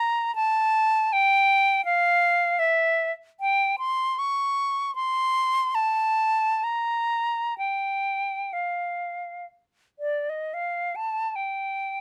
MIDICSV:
0, 0, Header, 1, 2, 480
1, 0, Start_track
1, 0, Tempo, 780234
1, 213, Time_signature, 3, 2, 24, 8
1, 689, Tempo, 734394
1, 1649, Tempo, 807537
1, 2129, Tempo, 774194
1, 3569, Tempo, 882353
1, 4049, Tempo, 949367
1, 5489, Tempo, 1060071
1, 5969, Tempo, 834492
1, 6449, Tempo, 770218
1, 6862, End_track
2, 0, Start_track
2, 0, Title_t, "Flute"
2, 0, Program_c, 0, 73
2, 0, Note_on_c, 0, 82, 97
2, 212, Note_off_c, 0, 82, 0
2, 217, Note_on_c, 0, 81, 111
2, 694, Note_on_c, 0, 79, 105
2, 703, Note_off_c, 0, 81, 0
2, 1162, Note_off_c, 0, 79, 0
2, 1166, Note_on_c, 0, 77, 112
2, 1650, Note_on_c, 0, 76, 98
2, 1659, Note_off_c, 0, 77, 0
2, 1964, Note_off_c, 0, 76, 0
2, 2134, Note_on_c, 0, 79, 94
2, 2355, Note_off_c, 0, 79, 0
2, 2370, Note_on_c, 0, 84, 99
2, 2619, Note_on_c, 0, 85, 96
2, 2628, Note_off_c, 0, 84, 0
2, 3087, Note_off_c, 0, 85, 0
2, 3095, Note_on_c, 0, 84, 105
2, 3585, Note_on_c, 0, 81, 93
2, 3593, Note_off_c, 0, 84, 0
2, 4067, Note_on_c, 0, 82, 91
2, 4075, Note_off_c, 0, 81, 0
2, 4541, Note_off_c, 0, 82, 0
2, 4544, Note_on_c, 0, 79, 79
2, 5025, Note_on_c, 0, 77, 60
2, 5032, Note_off_c, 0, 79, 0
2, 5492, Note_off_c, 0, 77, 0
2, 5735, Note_on_c, 0, 74, 66
2, 5872, Note_on_c, 0, 75, 65
2, 5878, Note_off_c, 0, 74, 0
2, 5986, Note_on_c, 0, 77, 67
2, 5994, Note_off_c, 0, 75, 0
2, 6226, Note_on_c, 0, 81, 78
2, 6235, Note_off_c, 0, 77, 0
2, 6457, Note_on_c, 0, 79, 64
2, 6466, Note_off_c, 0, 81, 0
2, 6862, Note_off_c, 0, 79, 0
2, 6862, End_track
0, 0, End_of_file